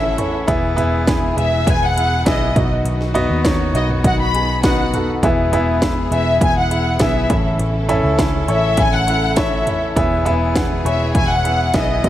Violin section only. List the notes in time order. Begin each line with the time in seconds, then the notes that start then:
Already playing: E5
1.38 E5
1.69 G#5
1.84 F#5
2.29 D#5
3.76 D#5
4.06 F#5
4.21 B5
4.65 F#5
6.13 E5
6.44 G#5
6.58 F#5
7.04 E5
8.52 E5
8.80 G#5
8.95 F#5
9.38 E5
10.85 E5
11.14 G#5
11.29 F#5
11.75 D#5